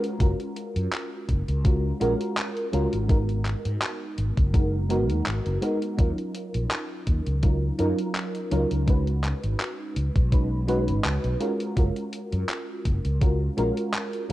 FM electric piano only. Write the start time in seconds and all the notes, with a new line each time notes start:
Already playing: G#3 C#4 F4 F#4 A#4
0.19 G#3 C#4 F4 F#4 A#4
1.64 G#3 C#4 F4 F#4 A#4
2.00 G#3 C#4 F4 F#4 A#4
2.72 G#3 C#4 F4 F#4 A#4
3.08 G#3 B3 D#4 F#4 A#4
4.53 G#3 B3 D#4 F#4 A#4
4.89 G#3 B3 D#4 F#4 A#4
5.62 G#3 B3 D#4 F#4 A#4
5.97 F#3 C#4 D#4 F4 A#4
7.42 F#3 C#4 D#4 F4 A#4
7.78 F#3 C#4 D#4 F4 A#4
8.51 F#3 C#4 D#4 F4 A#4
8.86 G#3 C#4 D#4 F#4 B4
10.31 G#3 C#4 D#4 F#4 B4
10.67 G#3 C#4 D#4 F#4 B4
11.40 G#3 C#4 F4 F#4 A#4
11.75 G#3 C#4 F4 F#4 A#4
13.21 G#3 C#4 F4 F#4 A#4
13.57 G#3 C#4 F4 F#4 A#4
14.29 G#3